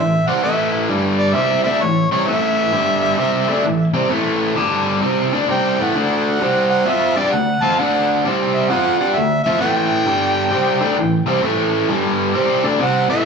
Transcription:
Already playing: overdriven electric guitar A2 E3
0.00 harmonica E5
0.28 overdriven electric guitar C3 G3 C4, harmonica F#5
0.43 overdriven electric guitar A2 E3 A3, harmonica E5
0.88 overdriven electric guitar G2 D3 G3
1.19 harmonica D5
1.34 overdriven electric guitar C3 G3 C4, harmonica E5
1.64 overdriven electric guitar D3 A3 D4, harmonica E5
1.81 overdriven electric guitar A2 E3, harmonica C#5
2.11 overdriven electric guitar C3 G3 C4, harmonica C#5
2.27 overdriven electric guitar A2 E3 A3, harmonica E5
2.72 overdriven electric guitar G2 D3 G3
3.17 overdriven electric guitar C3 G3 C4
3.47 overdriven electric guitar D3 A3 D4
3.64 overdriven electric guitar A2 E3
3.94 overdriven electric guitar C3 G3 C4
4.10 overdriven electric guitar A2 E3 A3
4.56 overdriven electric guitar G2 D3 G3
5.01 overdriven electric guitar C3 G3 C4
5.33 overdriven electric guitar D3 A3 D4
5.49 overdriven electric guitar C3 G3 C4, harmonica G5
5.79 overdriven electric guitar A2 E3 A3, harmonica F#5
5.95 overdriven electric guitar D3 A3 D4
6.40 overdriven electric guitar C3 G3 C4
6.70 harmonica F#5
6.86 overdriven electric guitar F3 C4 F4, harmonica E5
7.16 overdriven electric guitar G3 D4 G4, harmonica D5
7.31 overdriven electric guitar D3 A3, harmonica F#5
7.62 overdriven electric guitar F3 C4 F4, harmonica A5
7.78 overdriven electric guitar D3 A3 D4, harmonica F#5
8.25 overdriven electric guitar C3 G3 C4
8.53 harmonica E5
8.68 overdriven electric guitar F3 C4 F4, harmonica F#5
8.98 overdriven electric guitar G3 D4 G4, harmonica F#5
9.14 overdriven electric guitar D3 A3, harmonica E5
9.43 overdriven electric guitar F3 C4 F4, harmonica E5
9.60 overdriven electric guitar A2 E3 A3, harmonica G5
10.07 overdriven electric guitar G2 D3 G3
10.52 overdriven electric guitar C3 G3 C4
10.81 overdriven electric guitar D3 A3 D4
10.97 overdriven electric guitar A2 E3
11.26 overdriven electric guitar C3 G3 C4
11.42 overdriven electric guitar A2 E3 A3
11.89 overdriven electric guitar G2 D3 G3
12.35 overdriven electric guitar C3 G3 C4
12.64 overdriven electric guitar D3 A3 D4
12.79 overdriven electric guitar C3 G3 C4, harmonica F#5
13.09 overdriven electric guitar A2 E3 A3, harmonica E5

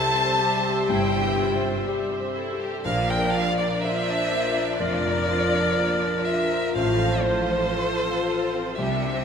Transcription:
Already playing: grand piano C2 G4 C5, french horn section G3 G4, viola section G3 E5, violin section E4 C5 A5, clarinet A4, flute A5
0.16 violin section C4
0.25 grand piano C5
0.39 violin section G3, clarinet G4
0.57 grand piano G4
0.64 violin section C4
0.88 double bass section G1, grand piano G2, cello section G2, violin section E4 G5, clarinet E4, flute G5
1.13 violin section G4
1.22 grand piano G4
1.38 violin section E4, clarinet F4
1.56 grand piano C5
1.64 violin section C4
1.87 violin section G3, clarinet G4, grand piano G4
2.12 violin section C4
2.20 grand piano C5
2.36 violin section E4, clarinet A4
2.53 grand piano G4
2.61 violin section G4
2.85 grand piano A#1, double bass section A#1, cello section A#2, viola section F3 D4, french horn section F3 F4, violin section A#3 D5 F5, clarinet A#4, flute F5
3.10 violin section D4 G5, flute G5
3.19 grand piano A#4
3.34 violin section F4 F5, flute F5
3.50 grand piano D5
3.59 violin section A#4 D5, flute D5
3.82 violin section F4 E5, grand piano A#4, clarinet C5, flute E5
4.09 violin section D4
4.15 grand piano D5
4.33 violin section A#3
4.48 grand piano A#4
4.57 violin section D4
4.79 double bass section F1, grand piano F2, cello section F2, violin section F4 D5, clarinet A#4, flute D5
5.07 violin section A#4
5.12 grand piano A#4
5.30 violin section F4
5.45 grand piano D5
5.54 violin section D4
5.78 violin section A#3, grand piano A#4
6.04 violin section D4
6.11 grand piano D5
6.26 violin section F4 E5, flute E5
6.44 grand piano A#4
6.53 violin section A#4
6.75 grand piano A1, double bass section A1, cello section A2, violin section A3 A4 F5, viola section F4, clarinet C5, flute F5
7.01 violin section C4
7.09 grand piano C5
7.24 violin section F4 C5, flute C5
7.42 grand piano F5
7.51 violin section C4
7.75 violin section A3, clarinet A4, grand piano C5
8.02 violin section C4
8.10 grand piano F5
8.28 violin section F4
8.44 grand piano C5
8.53 violin section C4
8.78 grand piano C2, double bass section C2, cello section C3, violin section G3 G4 E5, french horn section G3 D4, viola section G3 D4, clarinet G4, flute E5
9.06 violin section C4
9.13 grand piano C5

